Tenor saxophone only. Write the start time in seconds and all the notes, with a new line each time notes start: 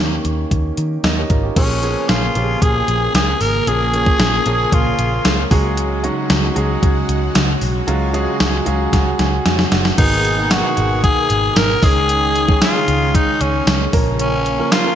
Already playing: A#3
1.57 C#4
2.09 F4
2.62 G#4
3.15 G#4
3.41 A#4
3.68 G#4
4.74 F4
9.98 D#4
10.51 F#4
11.04 G#4
11.57 A#4
11.84 G#4
12.63 F4
13.15 D#4
13.42 C#4
14.20 C#4
14.73 F4